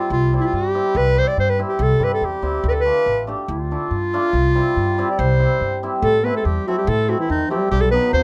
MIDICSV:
0, 0, Header, 1, 5, 480
1, 0, Start_track
1, 0, Key_signature, 0, "major"
1, 0, Tempo, 422833
1, 125, Time_signature, 2, 2, 24, 8
1, 9344, End_track
2, 0, Start_track
2, 0, Title_t, "Clarinet"
2, 0, Program_c, 0, 71
2, 0, Note_on_c, 0, 65, 69
2, 120, Note_off_c, 0, 65, 0
2, 139, Note_on_c, 0, 65, 96
2, 405, Note_off_c, 0, 65, 0
2, 405, Note_on_c, 0, 65, 61
2, 462, Note_on_c, 0, 64, 81
2, 479, Note_off_c, 0, 65, 0
2, 498, Note_on_c, 0, 65, 83
2, 515, Note_off_c, 0, 64, 0
2, 619, Note_on_c, 0, 67, 94
2, 636, Note_off_c, 0, 65, 0
2, 1100, Note_on_c, 0, 71, 115
2, 1117, Note_off_c, 0, 67, 0
2, 1343, Note_on_c, 0, 72, 98
2, 1360, Note_off_c, 0, 71, 0
2, 1447, Note_on_c, 0, 74, 90
2, 1464, Note_off_c, 0, 72, 0
2, 1566, Note_off_c, 0, 74, 0
2, 1585, Note_on_c, 0, 72, 85
2, 1697, Note_on_c, 0, 71, 89
2, 1714, Note_off_c, 0, 72, 0
2, 1811, Note_off_c, 0, 71, 0
2, 1906, Note_on_c, 0, 67, 80
2, 2073, Note_on_c, 0, 69, 96
2, 2090, Note_off_c, 0, 67, 0
2, 2315, Note_on_c, 0, 71, 89
2, 2332, Note_off_c, 0, 69, 0
2, 2420, Note_off_c, 0, 71, 0
2, 2426, Note_on_c, 0, 69, 74
2, 2553, Note_on_c, 0, 67, 73
2, 2570, Note_off_c, 0, 69, 0
2, 3020, Note_off_c, 0, 67, 0
2, 3042, Note_on_c, 0, 71, 88
2, 3077, Note_on_c, 0, 69, 71
2, 3094, Note_off_c, 0, 71, 0
2, 3183, Note_on_c, 0, 71, 111
2, 3200, Note_off_c, 0, 69, 0
2, 3674, Note_off_c, 0, 71, 0
2, 3980, Note_on_c, 0, 65, 97
2, 5770, Note_off_c, 0, 65, 0
2, 5795, Note_on_c, 0, 74, 64
2, 5890, Note_on_c, 0, 72, 92
2, 5907, Note_off_c, 0, 74, 0
2, 6608, Note_off_c, 0, 72, 0
2, 6845, Note_on_c, 0, 69, 92
2, 7091, Note_on_c, 0, 71, 85
2, 7108, Note_off_c, 0, 69, 0
2, 7209, Note_off_c, 0, 71, 0
2, 7224, Note_on_c, 0, 69, 75
2, 7326, Note_on_c, 0, 67, 81
2, 7343, Note_off_c, 0, 69, 0
2, 7576, Note_on_c, 0, 66, 86
2, 7593, Note_off_c, 0, 67, 0
2, 7686, Note_off_c, 0, 66, 0
2, 7693, Note_on_c, 0, 67, 77
2, 7813, Note_on_c, 0, 69, 90
2, 7830, Note_off_c, 0, 67, 0
2, 8050, Note_on_c, 0, 66, 74
2, 8068, Note_off_c, 0, 69, 0
2, 8168, Note_off_c, 0, 66, 0
2, 8173, Note_on_c, 0, 64, 74
2, 8281, Note_off_c, 0, 64, 0
2, 8295, Note_on_c, 0, 63, 80
2, 8513, Note_off_c, 0, 63, 0
2, 8519, Note_on_c, 0, 67, 78
2, 8744, Note_off_c, 0, 67, 0
2, 8749, Note_on_c, 0, 67, 104
2, 8867, Note_on_c, 0, 69, 82
2, 8884, Note_off_c, 0, 67, 0
2, 8974, Note_off_c, 0, 69, 0
2, 8980, Note_on_c, 0, 71, 96
2, 9214, Note_off_c, 0, 71, 0
2, 9232, Note_on_c, 0, 72, 97
2, 9344, Note_off_c, 0, 72, 0
2, 9344, End_track
3, 0, Start_track
3, 0, Title_t, "Hammered dulcimer"
3, 0, Program_c, 1, 15
3, 0, Note_on_c, 1, 55, 61
3, 360, Note_off_c, 1, 55, 0
3, 373, Note_on_c, 1, 55, 58
3, 376, Note_on_c, 1, 60, 53
3, 381, Note_on_c, 1, 64, 61
3, 490, Note_off_c, 1, 60, 0
3, 493, Note_off_c, 1, 64, 0
3, 833, Note_off_c, 1, 55, 0
3, 847, Note_on_c, 1, 55, 66
3, 849, Note_on_c, 1, 60, 57
3, 853, Note_on_c, 1, 64, 65
3, 967, Note_off_c, 1, 60, 0
3, 969, Note_off_c, 1, 64, 0
3, 1303, Note_off_c, 1, 55, 0
3, 1317, Note_on_c, 1, 55, 48
3, 1324, Note_on_c, 1, 64, 56
3, 1326, Note_on_c, 1, 60, 52
3, 1444, Note_off_c, 1, 64, 0
3, 1446, Note_off_c, 1, 60, 0
3, 1787, Note_off_c, 1, 55, 0
3, 1801, Note_on_c, 1, 55, 59
3, 1808, Note_on_c, 1, 60, 55
3, 1809, Note_on_c, 1, 64, 71
3, 1927, Note_off_c, 1, 60, 0
3, 1927, Note_off_c, 1, 64, 0
3, 2258, Note_off_c, 1, 55, 0
3, 2267, Note_on_c, 1, 60, 43
3, 2270, Note_on_c, 1, 64, 60
3, 2271, Note_on_c, 1, 55, 54
3, 2397, Note_off_c, 1, 60, 0
3, 2397, Note_off_c, 1, 64, 0
3, 2737, Note_off_c, 1, 55, 0
3, 2751, Note_on_c, 1, 55, 69
3, 2756, Note_on_c, 1, 60, 60
3, 2757, Note_on_c, 1, 64, 58
3, 2881, Note_off_c, 1, 60, 0
3, 2881, Note_off_c, 1, 64, 0
3, 3063, Note_off_c, 1, 55, 0
3, 3238, Note_on_c, 1, 57, 61
3, 3240, Note_on_c, 1, 62, 41
3, 3248, Note_on_c, 1, 65, 57
3, 3363, Note_off_c, 1, 62, 0
3, 3364, Note_off_c, 1, 57, 0
3, 3365, Note_off_c, 1, 65, 0
3, 3714, Note_on_c, 1, 62, 52
3, 3716, Note_on_c, 1, 57, 63
3, 3727, Note_on_c, 1, 67, 73
3, 3840, Note_off_c, 1, 62, 0
3, 3841, Note_off_c, 1, 57, 0
3, 3847, Note_off_c, 1, 67, 0
3, 4212, Note_on_c, 1, 62, 45
3, 4217, Note_on_c, 1, 57, 52
3, 4221, Note_on_c, 1, 64, 60
3, 4330, Note_off_c, 1, 62, 0
3, 4332, Note_off_c, 1, 57, 0
3, 4334, Note_off_c, 1, 64, 0
3, 4691, Note_on_c, 1, 57, 71
3, 4696, Note_on_c, 1, 62, 77
3, 4701, Note_on_c, 1, 65, 81
3, 4811, Note_off_c, 1, 57, 0
3, 4811, Note_off_c, 1, 62, 0
3, 4812, Note_off_c, 1, 65, 0
3, 5162, Note_on_c, 1, 55, 68
3, 5170, Note_on_c, 1, 60, 62
3, 5172, Note_on_c, 1, 64, 68
3, 5289, Note_off_c, 1, 60, 0
3, 5289, Note_off_c, 1, 64, 0
3, 5639, Note_off_c, 1, 55, 0
3, 5653, Note_on_c, 1, 55, 74
3, 5655, Note_on_c, 1, 60, 68
3, 5662, Note_on_c, 1, 64, 83
3, 5771, Note_off_c, 1, 60, 0
3, 5775, Note_off_c, 1, 64, 0
3, 6102, Note_off_c, 1, 55, 0
3, 6115, Note_on_c, 1, 55, 49
3, 6118, Note_on_c, 1, 60, 52
3, 6128, Note_on_c, 1, 64, 68
3, 6242, Note_off_c, 1, 60, 0
3, 6247, Note_off_c, 1, 64, 0
3, 6604, Note_off_c, 1, 55, 0
3, 6617, Note_on_c, 1, 55, 65
3, 6621, Note_on_c, 1, 60, 63
3, 6623, Note_on_c, 1, 64, 78
3, 6734, Note_off_c, 1, 60, 0
3, 6735, Note_off_c, 1, 64, 0
3, 6903, Note_off_c, 1, 55, 0
3, 7093, Note_on_c, 1, 57, 52
3, 7101, Note_on_c, 1, 60, 52
3, 7106, Note_on_c, 1, 64, 64
3, 7209, Note_off_c, 1, 57, 0
3, 7213, Note_off_c, 1, 60, 0
3, 7216, Note_off_c, 1, 64, 0
3, 7578, Note_on_c, 1, 57, 63
3, 7583, Note_on_c, 1, 64, 69
3, 7585, Note_on_c, 1, 60, 66
3, 7692, Note_off_c, 1, 57, 0
3, 7694, Note_off_c, 1, 64, 0
3, 7695, Note_off_c, 1, 60, 0
3, 8036, Note_on_c, 1, 60, 59
3, 8038, Note_on_c, 1, 64, 64
3, 8042, Note_on_c, 1, 57, 54
3, 8161, Note_off_c, 1, 60, 0
3, 8161, Note_off_c, 1, 64, 0
3, 8163, Note_off_c, 1, 57, 0
3, 8517, Note_on_c, 1, 57, 70
3, 8524, Note_on_c, 1, 60, 66
3, 8526, Note_on_c, 1, 64, 68
3, 8643, Note_off_c, 1, 57, 0
3, 8643, Note_off_c, 1, 64, 0
3, 8644, Note_off_c, 1, 60, 0
3, 8992, Note_on_c, 1, 59, 55
3, 8998, Note_on_c, 1, 54, 65
3, 9001, Note_on_c, 1, 63, 64
3, 9118, Note_off_c, 1, 59, 0
3, 9122, Note_off_c, 1, 63, 0
3, 9344, Note_off_c, 1, 54, 0
3, 9344, End_track
4, 0, Start_track
4, 0, Title_t, "Trombone"
4, 0, Program_c, 2, 57
4, 6825, Note_on_c, 2, 57, 82
4, 7058, Note_off_c, 2, 57, 0
4, 7063, Note_on_c, 2, 59, 67
4, 7187, Note_on_c, 2, 57, 74
4, 7204, Note_off_c, 2, 59, 0
4, 7321, Note_on_c, 2, 55, 68
4, 7338, Note_off_c, 2, 57, 0
4, 7563, Note_off_c, 2, 55, 0
4, 7577, Note_on_c, 2, 54, 62
4, 7684, Note_on_c, 2, 55, 70
4, 7701, Note_off_c, 2, 54, 0
4, 7806, Note_on_c, 2, 57, 79
4, 7823, Note_off_c, 2, 55, 0
4, 8154, Note_on_c, 2, 52, 76
4, 8171, Note_off_c, 2, 57, 0
4, 8275, Note_on_c, 2, 51, 75
4, 8292, Note_off_c, 2, 52, 0
4, 8524, Note_on_c, 2, 55, 76
4, 8541, Note_off_c, 2, 51, 0
4, 8742, Note_off_c, 2, 55, 0
4, 8749, Note_on_c, 2, 55, 81
4, 8989, Note_on_c, 2, 59, 71
4, 9006, Note_off_c, 2, 55, 0
4, 9224, Note_on_c, 2, 60, 77
4, 9241, Note_off_c, 2, 59, 0
4, 9335, Note_off_c, 2, 60, 0
4, 9344, End_track
5, 0, Start_track
5, 0, Title_t, "Upright bass"
5, 0, Program_c, 3, 32
5, 117, Note_on_c, 3, 36, 101
5, 407, Note_off_c, 3, 36, 0
5, 601, Note_on_c, 3, 43, 77
5, 890, Note_off_c, 3, 43, 0
5, 1076, Note_on_c, 3, 36, 107
5, 1367, Note_off_c, 3, 36, 0
5, 1559, Note_on_c, 3, 43, 77
5, 1849, Note_off_c, 3, 43, 0
5, 2033, Note_on_c, 3, 36, 116
5, 2180, Note_off_c, 3, 36, 0
5, 2266, Note_on_c, 3, 43, 74
5, 2491, Note_off_c, 3, 43, 0
5, 2512, Note_on_c, 3, 40, 74
5, 2734, Note_off_c, 3, 40, 0
5, 2750, Note_on_c, 3, 38, 66
5, 2973, Note_off_c, 3, 38, 0
5, 2994, Note_on_c, 3, 38, 106
5, 3285, Note_off_c, 3, 38, 0
5, 3476, Note_on_c, 3, 33, 81
5, 3767, Note_off_c, 3, 33, 0
5, 3955, Note_on_c, 3, 38, 107
5, 4247, Note_off_c, 3, 38, 0
5, 4436, Note_on_c, 3, 43, 77
5, 4727, Note_off_c, 3, 43, 0
5, 4917, Note_on_c, 3, 36, 93
5, 5208, Note_off_c, 3, 36, 0
5, 5409, Note_on_c, 3, 43, 73
5, 5696, Note_off_c, 3, 43, 0
5, 5889, Note_on_c, 3, 36, 117
5, 6177, Note_off_c, 3, 36, 0
5, 6369, Note_on_c, 3, 43, 75
5, 6656, Note_off_c, 3, 43, 0
5, 6839, Note_on_c, 3, 45, 113
5, 7129, Note_off_c, 3, 45, 0
5, 7322, Note_on_c, 3, 40, 83
5, 7467, Note_off_c, 3, 40, 0
5, 7803, Note_on_c, 3, 45, 124
5, 8091, Note_off_c, 3, 45, 0
5, 8283, Note_on_c, 3, 40, 93
5, 8427, Note_off_c, 3, 40, 0
5, 8758, Note_on_c, 3, 35, 101
5, 9048, Note_off_c, 3, 35, 0
5, 9228, Note_on_c, 3, 39, 87
5, 9344, Note_off_c, 3, 39, 0
5, 9344, End_track
0, 0, End_of_file